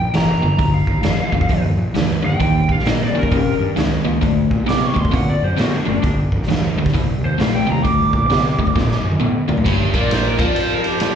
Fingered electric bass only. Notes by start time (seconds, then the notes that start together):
0.16 F1
0.42 G1
0.59 D2
0.87 D#2
1.05 F2
1.50 D#2
1.78 A#1
1.95 D2
2.23 D#2
2.40 D#2
2.69 G2
2.86 A#2
3.13 C#3
3.32 C3
3.60 G2
3.77 C#2
4.05 C#2
4.22 D2
4.51 A#2
4.68 C3
5.13 A#2
5.42 F#2
5.58 A2
5.88 F#1
6.04 G1
6.33 A#1
6.47 D2
6.76 D2
6.95 C2
7.22 D#2
7.40 A#1
7.68 D#2
7.85 D2
8.13 A#2
8.29 C3
8.76 A#2
9.04 F#2
9.22 A2
9.48 A#2
9.66 G1
9.94 A#1
10.39 F2